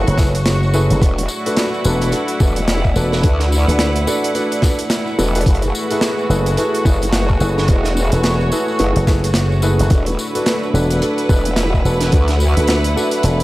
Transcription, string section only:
Already playing: F#4 C#6
1.02 E4
1.28 F#5
1.52 B4
5.47 F#4
5.98 C#5
9.91 E4
10.05 B4
10.85 F#5

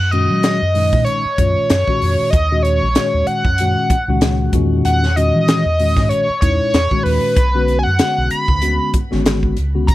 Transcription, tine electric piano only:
0.13 A#2 D#3 G#3 C#4 F#4
0.74 A#2 D#3 G#3 C#4 D#4
1.39 A#2 D#3 G#3 C#4 F4
1.88 A#2 D#3 G#3 C#4 F#4
2.51 A#2 D#3 G#3 C#4 F#4
2.96 A#2 D#3 G#3 C#4 F#4
3.60 A#2 D#3 G#3 C#4 F#4
4.09 A#2 D#3 G#3 C#4 F#4
4.54 A#2 D#3 G#3 C#4 F#4
5.17 A#2 D#3 G#3 C#4 F#4
5.79 A#2 D#3 G#3 C#4 F#4
6.42 A#2 G#3 C#4 D#4 E4
6.91 A#2 D#3 G#3 C#4 F#4
7.55 D3 G#3 B3 C#4 F#4
7.99 D3 G#3 B3 C#4 F#4
8.62 D3 G#3 B3 C#4 F#4
9.11 D3 G#3 B3 C#4 F#4
9.75 D3 G#3 B3 C#4 F#4

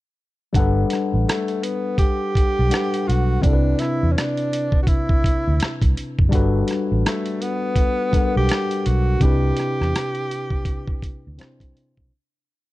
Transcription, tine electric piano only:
0.53 G3 D4 F#5
0.58 A4 B4
2.70 G3 D4 A4 B4 F#5
3.40 C3 C4 D4
3.45 E4 A4
3.53 B4
6.29 G3 D4 F#4
6.34 A4 B4
8.12 G3 D4 A4 A#4 F#5
8.21 B4
9.19 C3 C4 D4
9.24 E4 B4
11.37 C3 C4 D4 E4 C5

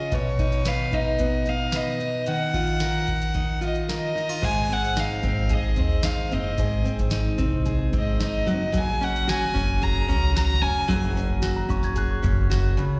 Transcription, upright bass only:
4.43 G#1
5.23 G#1
5.77 D#2
6.32 F#1
6.58 G#1
7.00 G#1
7.39 C2
7.93 G#1
8.47 F#1
9.55 F#1
10.09 C#2
10.62 F1
10.89 F#1
11.30 F#1
11.70 F#1
12.24 F#1
12.78 C#2

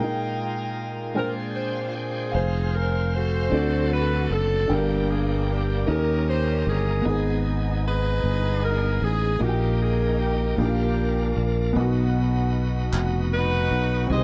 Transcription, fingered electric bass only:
2.35 F1
3.52 D2
4.31 F#1
4.70 G1
5.88 D#2
6.67 G1
7.06 G#1
8.24 G1
9.02 A1
9.41 A#1
10.58 A#1
11.37 A#1
11.76 B1
12.93 F1
13.71 B1
14.10 C2

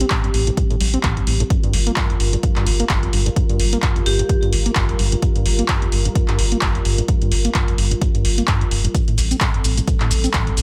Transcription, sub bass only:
0.34 A1
0.81 A1
1.04 A1
1.27 A1
1.74 G1
2.20 G1
2.67 G1
2.90 G1
3.13 G1
3.60 G1
4.06 G1
4.53 G1
4.76 G1
4.99 G1
5.46 G1
5.92 G1
6.39 G1
6.62 G1
6.85 G1
7.32 G1
7.78 G1
8.25 G1
8.48 G2
8.71 F1
9.18 A1
9.64 A1
10.11 A1
10.34 A1
10.57 A1

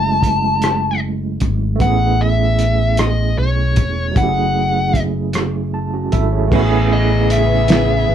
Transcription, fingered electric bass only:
Already playing: F#1
1.42 G#1
1.81 A1
3.38 B1
3.78 E1
4.16 F#1
6.14 G#1
6.52 A1
8.09 G#1

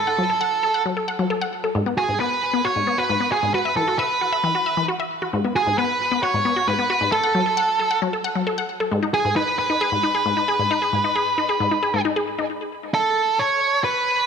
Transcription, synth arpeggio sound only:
0.07 F#5
0.18 F#3
0.30 A4
0.41 F#5
0.63 A4
0.74 F#5
0.86 F#3
0.97 A4
1.08 F#5
1.19 F#3
1.30 A4
1.42 F#5
1.64 A4
1.75 G#2
1.86 B3
1.98 F#4
2.09 G#2
2.20 B3
2.54 B3
2.65 F#4
2.76 G#2
2.87 B3
2.98 F#4
3.09 G#2
3.21 B3
3.32 F#4
3.43 G#2
3.54 F#4
3.65 E5
3.77 E3
3.88 F#4
3.99 E5
4.21 F#4
4.33 E5
4.44 E3
4.55 F#4
4.66 E5
4.77 E3
4.88 F#4
5.00 E5
5.22 F#4
5.33 G#2
5.44 B3
5.56 F#4
5.67 G#2
5.78 B3
6.12 B3
6.23 F#4
6.34 G#2
6.45 B3
6.56 F#4
6.68 G#2
6.79 B3
6.90 F#4
7.01 G#2
7.12 A4
7.23 F#5
7.35 F#3
7.46 A4
7.57 F#5
7.80 A4
7.91 F#5
8.02 F#3
8.13 A4
8.24 F#5
8.36 F#3
8.47 A4
8.58 F#5
8.80 A4
8.91 G#2
9.03 D#4
9.14 G#4
9.25 G#2
9.36 D#4
9.70 D#4
9.81 G#4
9.92 G#2
10.03 D#4
10.15 G#4
10.26 G#2
10.37 D#4
10.48 G#4
10.59 G#2
10.71 D#4
10.82 G#4
10.93 G#2
11.04 D#4
11.16 G#4
11.38 D#4
11.49 G#4
11.60 G#2
11.71 D#4
11.83 G#4
11.94 G#2
12.05 D#4
12.16 G#4
12.39 D#4

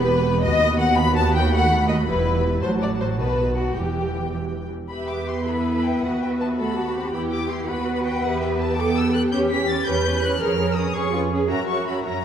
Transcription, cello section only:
Already playing: E2
0.44 D#2
2.09 E2
2.63 A2
3.19 B2
3.76 E2
4.90 B4
6.58 A4
6.77 F#4
6.95 G4
7.68 B4
8.78 A4
9.33 G4
9.86 B4
10.40 A#4
10.94 G#4
11.12 F4
11.31 G#4
11.50 F#4
12.05 C#4

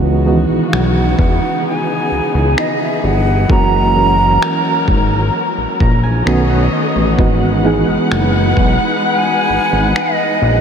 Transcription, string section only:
Already playing: C#3 E3 B3 D#4 F#4
1.65 G#4
3.50 F#3 A#4
6.27 B3 A4 C#5 D#5
7.19 G#3 D#4 B4 F#5

